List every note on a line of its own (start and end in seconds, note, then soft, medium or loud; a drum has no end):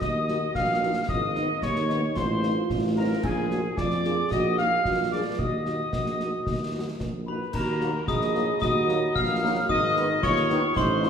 0.00 0.46 D#2 medium
0.00 1.08 F#4 medium
0.00 0.52 D#5 medium
0.00 0.52 D#6 medium
0.00 concert bass drum medium
0.00 snare medium
0.28 0.38 A#3 medium
0.28 0.38 D#4 medium
0.28 0.38 F#4 medium
0.28 snare medium
0.55 1.00 A#1 medium
0.55 1.05 F5 medium
0.55 1.05 F6 medium
0.55 concert bass drum medium
0.55 snare medium
0.82 0.92 A#3 medium
0.82 0.92 D#4 medium
0.82 0.92 F#4 medium
1.09 1.54 G#1 medium
1.09 1.21 F4 medium
1.09 1.63 D#5 medium
1.09 1.59 D#6 medium
1.09 concert bass drum medium
1.36 1.46 B3 medium
1.36 1.46 D#4 medium
1.36 2.18 D#4 medium
1.36 snare soft
1.62 2.08 D#2 medium
1.62 2.16 C#5 medium
1.62 2.18 C#6 medium
1.62 concert bass drum medium
1.62 snare medium
1.76 snare medium
1.90 2.00 B3 medium
1.90 2.00 D#4 medium
1.90 snare medium
2.16 2.57 A1 medium
2.16 3.24 F4 medium
2.16 2.66 C5 medium
2.16 2.70 C6 medium
2.16 concert bass drum medium
2.16 snare medium
2.43 2.53 C4 medium
2.43 2.53 D#4 medium
2.43 2.53 F4 medium
2.43 snare medium
2.70 3.15 A1 medium
2.70 concert bass drum medium
2.70 snare medium
2.97 3.07 C4 medium
2.97 3.07 D#4 medium
2.97 3.07 F4 medium
2.97 3.22 A#4 medium
2.97 3.03 A#5 medium
3.23 3.69 A#1 medium
3.23 3.49 F4 medium
3.23 3.78 G#4 medium
3.23 3.74 G#5 medium
3.23 concert bass drum medium
3.23 crash soft
3.51 3.61 A#3 medium
3.51 3.61 D4 medium
3.51 3.61 F4 medium
3.51 3.63 F#4 medium
3.51 snare medium
3.77 4.23 F2 medium
3.77 3.91 F4 medium
3.77 4.31 D5 medium
3.77 4.33 D6 medium
3.77 concert bass drum medium
3.77 snare medium
3.91 snare medium
4.04 4.15 A#3 medium
4.04 4.15 D4 medium
4.04 4.15 F4 medium
4.04 4.30 G#4 medium
4.04 snare soft
4.31 4.76 A#1 medium
4.31 4.82 F#4 medium
4.31 4.57 D#5 medium
4.31 4.60 D#6 medium
4.31 concert bass drum medium
4.31 snare medium
4.58 4.68 A#3 medium
4.58 4.68 D#4 medium
4.58 4.68 F#4 medium
4.58 5.08 F5 loud
4.58 5.11 F6 medium
4.58 snare soft
4.85 5.30 A#1 medium
4.85 5.35 F4 medium
4.85 concert bass drum medium
4.85 snare medium
5.12 5.22 A#3 soft
5.12 5.22 D4 soft
5.12 5.22 G#4 soft
5.12 5.39 D5 medium
5.12 5.18 D6 medium
5.38 5.84 D#2 medium
5.38 7.23 F#4 medium
5.38 7.00 D#5 medium
5.38 6.96 D#6 medium
5.38 concert bass drum medium
5.66 5.76 A#3 soft
5.66 5.76 D#4 soft
5.66 5.76 F#4 soft
5.66 snare soft
5.93 6.37 A#1 medium
5.93 concert bass drum medium
5.93 snare medium
6.06 snare soft
6.19 6.29 A#3 soft
6.19 6.29 D#4 soft
6.19 6.29 F#4 soft
6.19 snare soft
6.46 6.91 D#2 medium
6.46 concert bass drum medium
6.46 snare medium
6.74 6.83 A#3 soft
6.74 6.84 D#4 soft
6.74 6.83 F#4 soft
7.00 7.45 A#1 medium
7.00 concert bass drum medium
7.00 snare medium
7.26 7.37 A#3 soft
7.26 7.37 D#4 soft
7.26 7.37 F#4 soft
7.26 7.52 B4 medium
7.26 7.32 B5 soft
7.26 7.53 B5 medium
7.53 7.98 D#2 medium
7.53 8.04 F#4 medium
7.53 8.04 A#4 medium
7.53 8.04 A#5 medium
7.53 8.05 A#5 medium
7.53 concert bass drum medium
7.53 crash soft
7.81 7.90 F#3 medium
7.81 7.90 A#3 medium
7.81 7.91 A#3 soft
7.81 7.91 D#4 soft
7.81 7.91 F#4 medium
7.81 snare soft
8.07 8.53 A#1 medium
8.07 8.58 G#4 medium
8.07 8.60 D#5 medium
8.07 8.57 D#6 medium
8.07 8.58 D#6 medium
8.07 concert bass drum medium
8.07 snare medium
8.21 snare medium
8.34 8.43 F#3 medium
8.34 8.44 A#3 medium
8.34 8.44 D#4 soft
8.34 8.45 F#4 medium
8.34 snare soft
8.61 9.06 D#2 medium
8.61 9.65 F#4 medium
8.61 9.11 D#5 medium
8.61 9.17 D#6 medium
8.61 9.12 D#6 medium
8.61 concert bass drum medium
8.61 snare medium
8.88 8.98 F#3 medium
8.88 8.98 A#3 medium
8.88 8.98 D#4 medium
8.88 8.98 F#4 medium
8.88 snare medium
9.15 9.60 A#1 medium
9.15 9.65 F5 medium
9.15 9.69 F6 medium
9.15 9.65 F6 medium
9.15 concert bass drum medium
9.15 snare medium
9.42 9.51 F#3 medium
9.42 9.52 A#3 medium
9.42 9.52 D#4 medium
9.42 9.52 F#4 medium
9.68 10.14 G#1 medium
9.68 10.24 D#4 medium
9.68 10.20 D#5 loud
9.68 10.19 D#6 medium
9.68 concert bass drum medium
9.96 10.06 D#3 medium
9.96 10.05 B3 medium
9.96 10.06 B3 medium
9.96 10.06 D#4 medium
9.96 snare medium
10.22 10.63 D#2 medium
10.22 10.76 F4 medium
10.22 10.73 C#5 loud
10.22 10.77 C#6 medium
10.22 10.73 C#6 medium
10.22 concert bass drum medium
10.22 snare medium
10.36 snare medium
10.50 10.59 D#3 medium
10.50 10.59 B3 medium
10.50 10.60 B3 medium
10.50 10.60 D#4 medium
10.50 snare medium
10.76 11.10 A1 medium
10.76 11.10 D#4 medium
10.76 11.10 C5 medium
10.76 11.10 C6 medium
10.76 concert bass drum medium
10.76 snare medium
11.03 11.10 F3 medium
11.03 11.10 C4 medium
11.03 11.10 D#4 medium
11.03 11.10 F4 medium
11.03 snare soft